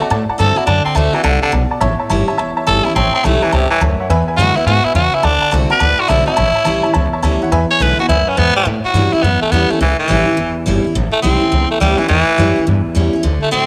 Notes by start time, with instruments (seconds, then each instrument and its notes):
Already playing: tenor saxophone A3
0.01 steel-string acoustic guitar C4, upright piano D5 F#5 A5, muted upright bass stroke
0.10 steel-string acoustic guitar A2, upright bass A2, upright piano D5 F#5 A5
0.29 upright piano D5 F#5 A5, muted upright bass stroke
0.38 upright bass G2, steel-string acoustic guitar D3 A3 C4 F#4, tenor saxophone A4, upright piano D5 A5
0.56 steel-string acoustic guitar C4 F#4, tenor saxophone E4, upright piano D5 F#5 A5, muted upright bass stroke
0.66 upright bass F#2, steel-string acoustic guitar D3, tenor saxophone D4, upright piano D5 F#5 A5
0.85 tenor saxophone C4, upright piano D5 F#5 A5, muted upright bass stroke
0.95 upright bass D2, steel-string acoustic guitar D3 A3 C4 F#4, tenor saxophone A3, upright piano D5 F#5 A5
1.13 tenor saxophone E3, steel-string acoustic guitar C4 F#4, upright piano D5 F#5 A5
1.23 upright bass C2, steel-string acoustic guitar C3, tenor saxophone D3, upright piano D5 F#5 A5
1.42 tenor saxophone D3, upright piano D5 F#5 A5
1.52 upright bass B1, steel-string acoustic guitar B2, upright piano D5 F#5 A5
1.71 upright piano D5 F#5 A5, muted upright bass stroke
1.81 upright bass A1, steel-string acoustic guitar A2, upright piano C#5 E5 A5
2.00 upright piano C#5 E5 A5, muted upright bass stroke
2.10 upright bass G1, steel-string acoustic guitar E3 G3 C#4 E4, upright piano C#5 E5 A5
2.27 steel-string acoustic guitar C#4 E4, upright piano C#5 E5 A5, muted upright bass stroke
2.38 upright bass E1, steel-string acoustic guitar E2, upright piano C#5 E5 A5
2.57 upright piano C#5 E5 A5, muted upright bass stroke
2.67 upright bass G1, steel-string acoustic guitar E3 G3 C#4 E4, tenor saxophone A4, upright piano C#5 E5 A5
2.84 steel-string acoustic guitar C#4 E4, tenor saxophone E4, upright piano C#5 E5 A5
2.95 upright bass A1, steel-string acoustic guitar A2, tenor saxophone C4, upright piano C#5 E5 A5
3.14 tenor saxophone C4, upright piano C#5 E5 A5
3.24 upright bass B1, steel-string acoustic guitar E3 G3 C#4 E4, tenor saxophone A3, upright piano C#5 E5 A5
3.42 tenor saxophone E3, steel-string acoustic guitar C#4 E4, upright piano C#5 E5 A5
3.52 upright bass C#2, steel-string acoustic guitar G2, tenor saxophone C3, upright piano C#5 E5 A5
3.70 tenor saxophone E3, upright piano C#5 E5 A5
3.81 upright bass D2, steel-string acoustic guitar F#2, upright piano C#5 E5 A5
4.00 upright piano C#5 E5 F#5, muted upright bass stroke
4.09 upright bass E2, steel-string acoustic guitar E2, upright piano B4 E5 G#5
4.28 upright piano B4 E5 G#5, muted upright bass stroke
4.37 upright bass F#2, steel-string acoustic guitar D3 G#3 B3 E4, tenor saxophone F#4, upright piano E5 G#5
4.56 steel-string acoustic guitar B3 E4, tenor saxophone E4, upright piano B4 E5 F#5, muted upright bass stroke
4.66 upright bass G#2, steel-string acoustic guitar B2, tenor saxophone F#4, upright piano B4 E5 G#5
4.85 tenor saxophone E4, upright piano B4 E5 G#5, muted upright bass stroke
4.94 upright bass E2, steel-string acoustic guitar C#3, tenor saxophone F#4, upright piano B4 E5 G#5
5.13 tenor saxophone E4, upright piano B4 E5 G#5
5.23 upright bass D2, steel-string acoustic guitar D3, tenor saxophone D4, upright piano D5 F#5 A5
5.42 upright piano D5 F#5 A5
5.51 upright bass C2, steel-string acoustic guitar D3 A3 C4 F#4, upright piano D5 F#5 A5
5.70 steel-string acoustic guitar C4 F#4, tenor saxophone B4, upright piano D5 F#5 A5
5.80 upright bass D2, steel-string acoustic guitar A2, upright piano D5 F#5 A5
5.99 tenor saxophone F#4, upright piano D5 F#5 C6
6.08 upright bass B1, steel-string acoustic guitar D3 A3 C4 F#4, tenor saxophone E4, upright piano D5 F#5 A5
6.26 steel-string acoustic guitar C4 F#4, tenor saxophone E4, upright piano D5 F#5 A5
6.37 upright bass A1, steel-string acoustic guitar A2, upright piano C#5 E5 A5
6.55 upright piano C#5 E5 A5, muted upright bass stroke
6.65 upright bass B1, steel-string acoustic guitar E3 G3 C#4 E4, upright piano C#5 E5 A5
6.83 steel-string acoustic guitar C#4 E4, upright piano C#5 E5 A5
6.93 upright bass C#2, steel-string acoustic guitar E2, upright piano C#5 E5 A5
7.13 upright piano C#5 E5 A5, muted upright bass stroke
7.22 upright bass D2, steel-string acoustic guitar E3 G3 C#4 E4, upright piano C#5 E5 A5
7.42 steel-string acoustic guitar C#4 E4, upright piano C#5 E5 F#5, muted upright bass stroke
7.52 upright bass E2, steel-string acoustic guitar E2, upright piano B4 E5 G#5
7.70 upright piano B4 E5 G#5, tenor saxophone C#5
7.80 upright bass B1, steel-string acoustic guitar D3 G#3 B3 E4, upright piano B4 E5 G#5, tenor saxophone B4
7.98 steel-string acoustic guitar B3 E4, tenor saxophone F#4, upright piano B4 E5 G#5, muted upright bass stroke
8.08 upright bass D2, steel-string acoustic guitar F#2, tenor saxophone E4, upright piano B4 E5 G#5
8.27 tenor saxophone C#4, upright piano B4 E5 F#5, muted upright bass stroke
8.37 upright bass E2, steel-string acoustic guitar G#2, tenor saxophone B3, upright piano B4 E5 G#5
8.56 tenor saxophone G3, upright piano B4 E5 G#5
8.65 steel-string acoustic guitar A2, upright bass A2
8.84 tenor saxophone F#4, muted upright bass stroke
8.94 upright bass G2, steel-string acoustic guitar E3 G3 C#4 E4
9.13 steel-string acoustic guitar C#4 E4, tenor saxophone E4, muted upright bass stroke
9.22 steel-string acoustic guitar E2, upright bass F#2, tenor saxophone B3
9.42 tenor saxophone A3, muted upright bass stroke
9.51 upright bass E2, steel-string acoustic guitar E3 G3 C#4 E4, tenor saxophone B3
9.70 tenor saxophone A3, steel-string acoustic guitar C#4 E4, muted upright bass stroke
9.81 upright bass C#2, steel-string acoustic guitar A2, tenor saxophone E3
9.99 tenor saxophone E3, muted upright bass stroke
10.08 upright bass A1, steel-string acoustic guitar E3 G3 C#4 E4
10.26 steel-string acoustic guitar C#4 E4, muted upright bass stroke
10.37 upright bass F#1, steel-string acoustic guitar E2
10.57 muted upright bass stroke
10.66 upright bass G1, steel-string acoustic guitar E3 G3 C#4 E4
10.84 steel-string acoustic guitar C#4 E4, muted upright bass stroke
10.95 upright bass A1, steel-string acoustic guitar A2
11.12 tenor saxophone A3
11.22 upright bass B1, steel-string acoustic guitar E3 G3 C#4 E4, tenor saxophone C4
11.41 steel-string acoustic guitar C#4 E4
11.52 upright bass C#2, steel-string acoustic guitar E2
11.71 tenor saxophone A3, muted upright bass stroke
11.80 upright bass D2, steel-string acoustic guitar E3 G3 C#4 E4, tenor saxophone G3
11.98 tenor saxophone E3, steel-string acoustic guitar C#4 E4, muted upright bass stroke
12.08 upright bass E2, steel-string acoustic guitar A2, tenor saxophone E3
12.38 upright bass F#2, steel-string acoustic guitar E3 G3 C#4 E4
12.56 steel-string acoustic guitar C#4 E4, muted upright bass stroke
12.67 steel-string acoustic guitar E2, upright bass G2
12.86 muted upright bass stroke
12.95 upright bass E2, steel-string acoustic guitar E3 G3 C#4 E4
13.13 steel-string acoustic guitar C#4 E4, muted upright bass stroke
13.23 upright bass D2, steel-string acoustic guitar D3
13.42 tenor saxophone A3, muted upright bass stroke
13.51 upright bass A2, steel-string acoustic guitar D3 A3 C4 F#4, tenor saxophone C4